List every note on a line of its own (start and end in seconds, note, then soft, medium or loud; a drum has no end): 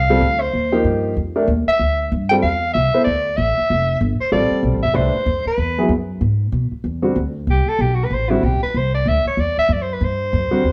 0.00 0.20 C2 medium
0.00 0.42 F5 loud
0.10 0.20 G3 medium
0.10 0.20 C4 medium
0.10 0.20 F4 medium
0.10 0.20 A4 medium
0.21 0.52 D2 medium
0.41 0.84 C5 medium
0.53 0.84 D#2 medium
0.72 1.14 F3 medium
0.72 1.14 A#3 medium
0.72 1.14 D#4 medium
0.72 1.13 G4 medium
0.84 1.15 G2 medium
1.16 1.47 F2 medium
1.36 1.46 A3 medium
1.36 1.46 D4 medium
1.36 1.46 G4 medium
1.36 1.47 A#4 medium
1.48 1.65 D#2 medium
1.67 2.08 E5 medium
1.67 muted upright bass stroke soft
1.79 2.10 D2 medium
2.12 2.42 G2 medium
2.29 2.42 G3 medium
2.29 2.42 C4 medium
2.29 2.42 F4 medium
2.29 2.42 A4 medium
2.29 2.35 G5 medium
2.42 2.73 E2 medium
2.42 2.72 F5 medium
2.73 2.92 C2 medium
2.73 3.03 E5 medium
2.94 3.05 B3 medium
2.94 3.05 E4 medium
2.94 3.05 A4 medium
2.94 3.05 C5 medium
2.94 muted upright bass stroke soft
3.04 3.37 D2 medium
3.04 3.38 D5 medium
3.37 3.55 A1 medium
3.37 4.00 E5 medium
3.58 muted upright bass stroke soft
3.70 4.00 F1 medium
4.01 4.18 G1 medium
4.19 4.32 C5 medium
4.19 muted upright bass stroke soft
4.32 4.50 A1 medium
4.32 4.79 G3 medium
4.32 4.79 C4 medium
4.32 4.79 F4 medium
4.32 4.79 A4 medium
4.32 4.62 D5 medium
4.50 muted upright bass stroke soft
4.63 4.74 B1 medium
4.74 4.83 A1 medium
4.83 4.94 F1 medium
4.83 4.97 E5 medium
4.93 5.13 C2 medium
4.93 5.12 A3 medium
4.93 5.12 D4 medium
4.93 5.12 G4 medium
4.93 5.12 B4 medium
4.93 5.46 C5 medium
5.15 muted upright bass stroke soft
5.26 5.44 F2 medium
5.46 5.88 B4 medium
5.46 muted upright bass stroke soft
5.58 5.88 E2 medium
5.78 5.89 F#3 medium
5.78 5.89 B3 medium
5.78 5.89 E4 medium
5.78 5.89 G#4 medium
5.89 6.20 F#2 medium
6.21 6.52 G#2 medium
6.52 6.71 B2 medium
6.72 muted upright bass stroke soft
6.84 7.15 E2 medium
7.02 7.14 D3 medium
7.02 7.15 G3 medium
7.02 7.14 C4 medium
7.02 7.14 F#4 medium
7.16 7.46 D2 medium
7.47 7.66 C2 medium
7.47 7.71 G4 medium
7.66 7.83 A4 medium
7.66 muted upright bass stroke soft
7.79 8.10 B1 medium
7.79 7.96 G4 medium
7.94 8.06 F#4 medium
8.05 8.15 B4 medium
8.10 8.42 A1 medium
8.10 8.31 C5 medium
8.30 8.41 D3 medium
8.30 8.42 G3 medium
8.30 8.42 C4 medium
8.30 8.46 E4 medium
8.30 8.42 F#4 medium
8.43 8.61 B1 medium
8.43 8.62 G4 medium
8.62 8.79 B4 medium
8.62 muted upright bass stroke soft
8.74 9.05 C2 medium
8.74 8.94 C5 medium
8.95 9.10 D5 medium
9.06 9.24 D2 medium
9.06 9.27 E5 medium
9.25 9.42 C#5 medium
9.25 muted upright bass stroke soft
9.37 9.55 E2 medium
9.37 9.58 D5 medium
9.57 9.74 E5 loud
9.57 muted upright bass stroke soft
9.69 10.00 F#2 medium
9.69 9.84 D5 medium
9.82 9.95 C5 medium
9.93 10.05 B4 medium
10.01 10.32 G2 medium
10.01 10.72 C5 medium
10.33 10.51 F#2 medium
10.51 10.63 D3 medium
10.51 10.63 G3 medium
10.51 10.63 C4 medium
10.51 10.63 F#4 medium
10.51 muted upright bass stroke soft
10.64 10.72 E2 medium